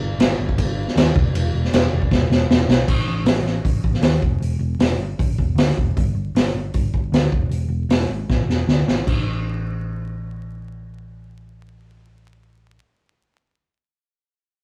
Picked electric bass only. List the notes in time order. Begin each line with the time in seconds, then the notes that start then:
0.00 G1
0.18 G1
0.39 G1
0.58 G1
0.96 D#2
1.15 E1
1.35 E1
1.53 E1
1.73 E1
1.93 E1
2.11 E1
2.30 E1
2.49 E1
2.68 B1
2.88 A1
3.07 A1
3.24 A1
3.43 A1
3.65 A1
3.84 A1
4.02 D#2
4.23 E1
4.40 E1
4.59 E1
4.79 E1
4.97 G1
5.19 A1
5.38 E1
5.55 D2
5.77 E1
5.97 G1
6.14 G1
6.35 G1
6.54 G1
6.74 G1
6.94 G1
7.12 D2
7.32 E1
7.49 E1
7.68 E1
7.89 E1
8.09 G#1
8.30 A1
8.47 E1
8.67 D2
8.87 G#1
9.07 A1